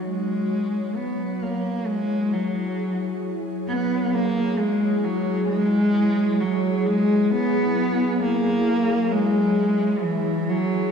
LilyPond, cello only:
\new Staff \with { instrumentName = "Cello" } { \clef bass \time 4/4 \key fis \mixolydian \tempo 4 = 66 gis4 b8 ais8 gis8 fis4 r8 | b8 ais8 gis8 fis8 gis4 fis8 gis8 | b4 ais4 gis4 e8 fis8 | }